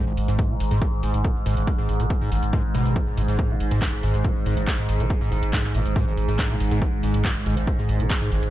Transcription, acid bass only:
0.07 G#1
0.28 G#2
0.50 A#2
0.71 G#2
0.82 G#1
1.03 G#2
1.25 A#2
1.46 G#2
1.57 G#1
1.78 G#2
2.00 A#2
2.21 G#2
2.32 G#1
2.53 G#2
2.75 B2
2.96 G#3
3.17 G#2
3.28 G#2
3.50 A#2
3.71 G#2
3.82 G#1
4.03 G#2
4.25 A#2
4.46 G#2
4.57 G#1
4.78 G#2
5.00 A#2
5.21 G#2
5.32 G#1
5.53 G#2
5.75 A#2
5.96 G#2
6.07 G#1
6.28 G#2
6.50 A#2
6.71 G#2
6.82 G#1
7.03 G#2
7.25 A#2
7.46 G#2
7.57 G#1
7.78 G#2
8.00 A#2
8.21 G#2
8.32 G#1

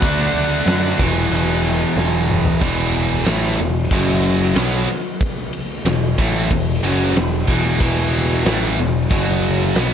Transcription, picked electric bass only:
0.02 D2
0.34 D2
0.66 F#2
0.99 E1
1.31 E1
1.96 E1
2.61 E1
3.26 A1
3.59 E1
3.91 F#1
4.56 B1
5.85 E1
6.18 A1
6.51 E1
6.83 F#1
7.16 E1
7.48 E1
7.80 E1
8.45 A1
8.78 E1
9.11 F#1
9.75 B1

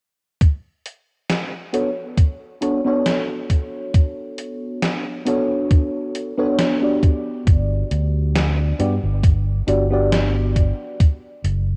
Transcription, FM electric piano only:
1.73 B3 D4 F#4 A4 C#5
2.61 B3 D4 F#4 A4 C#5
2.84 B3 D4 F#4 A4 C#5
5.25 B3 D4 F#4 A4 C#5
6.38 B3 D4 F#4 A4 C#5
6.81 B3 D4 F#4 G4 D5
8.79 B3 D4 F#4 G4 D5
9.67 B3 D4 F#4 G4 D5
9.90 B3 D4 F#4 G4 D5

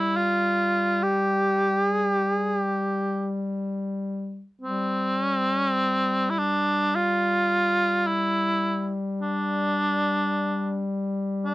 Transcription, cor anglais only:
Already playing: E4
0.16 F4
1.03 G4
1.88 G#4
2.10 G4
2.35 G#4
2.58 G4
4.61 C4
5.20 C#4
5.36 C4
5.53 C#4
5.69 C4
6.30 E4
6.39 D4
6.95 F4
8.07 E4
9.22 D4
11.46 D4

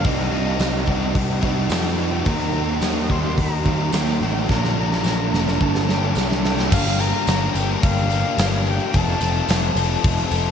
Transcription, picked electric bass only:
0.05 C2
0.31 C2
0.59 C2
0.88 C2
1.15 C2
1.70 F2
2.26 D#2
2.53 D#2
2.81 D#2
3.10 D#2
3.38 D#2
3.66 D#2
3.93 D#2
4.21 A1
4.49 A#1
4.76 A#1
5.04 A#1
5.32 F1
5.61 G1
6.16 C2
6.72 G1
7.28 G1
7.55 G1
7.83 G1
8.38 G1
8.94 F1
9.21 F1
9.49 F1
9.76 F1
10.04 F1
10.32 F1

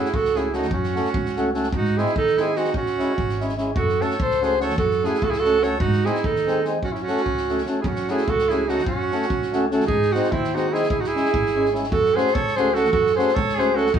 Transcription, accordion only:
0.35 A3 C#4 F#4 A4
0.53 A3 C#4 F#4 A4
0.95 A3 C#4 F#4 A4
1.37 A3 C#4 F#4 A4
1.54 A3 C#4 F#4 A4
1.98 G#3 C4 D#4 G#4
2.38 G#3 C4 D#4 G#4
2.56 G#3 C4 D#4 G#4
2.98 G#3 C#4 E4 G#4
3.40 G#3 C#4 E4 G#4
3.57 G#3 C#4 E4 G#4
4.00 A3 C#4 F#4 A4
4.41 A3 C#4 F#4 A4
4.59 A3 C#4 F#4 A4
5.03 A3 C#4 F#4 A4
5.44 A3 C#4 F#4 A4
5.62 A3 C#4 F#4 A4
6.05 G#3 C4 D#4 G#4
6.47 G#3 C4 D#4 G#4
6.64 G#3 C4 D#4 G#4
7.08 A3 C#4 F#4 A4
7.49 A3 C#4 F#4 A4
7.67 A3 C#4 F#4 A4
8.09 A3 C#4 F#4 A4
8.50 A3 C#4 F#4 A4
8.68 A3 C#4 F#4 A4
9.12 A3 C#4 F#4 A4
9.52 A3 C#4 F#4 A4
9.71 A3 C#4 F#4 A4
10.14 G#3 C4 D#4 G#4
10.55 G#3 C4 D#4 G#4
10.72 G#3 C4 D#4 G#4
11.14 G#3 C#4 E4 G#4
11.55 G#3 C#4 E4 G#4
11.73 G#3 C#4 E4 G#4
12.15 A3 C#4 F#4 A4
12.57 A3 C#4 F#4 A4
12.75 A3 C#4 F#4 A4
13.18 A3 C#4 F#4 A4
13.58 A3 C#4 F#4 A4
13.75 A3 C#4 F#4 A4

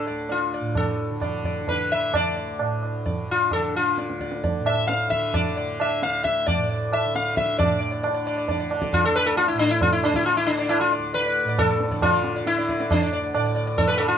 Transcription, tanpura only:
Already playing: A2 D3
0.10 D2
0.61 A2
1.11 D3
1.61 D3
2.10 D2
2.60 A2
3.10 D3
3.59 D3
4.10 D2
4.60 A2
5.08 D3
5.57 D3
6.07 D2
6.56 A2
7.06 D3
7.59 A2
8.10 D3
8.56 D3
9.04 D2
9.54 A2
10.01 D3
10.50 D3
10.99 D2
11.45 A2
11.93 D3
12.40 D3
12.88 D2
13.35 A2
13.83 D3

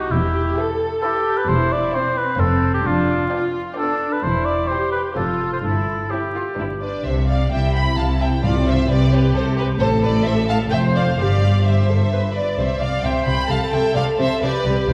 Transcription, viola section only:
0.10 G4
0.55 A4
1.01 G4
1.48 E4
1.92 C4
2.38 C4
2.84 D4
3.30 F4
3.76 D4
4.22 E4
4.69 G4
5.15 F4
5.63 E4
6.10 E4
6.34 F4
6.58 E4
6.81 D4
7.51 E4
8.43 F4
8.88 G4
9.80 A4
10.72 C5
11.18 G4
11.65 G4
11.88 A4
12.12 B4
12.35 D5
13.05 C5
13.51 A4
14.42 G4
14.88 F4

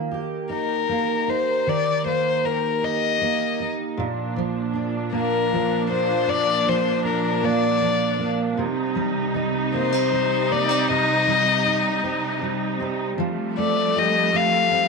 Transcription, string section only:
3.97 A#2 F3 D4
8.58 C3 G3 D#4
13.19 F3 G3 A3

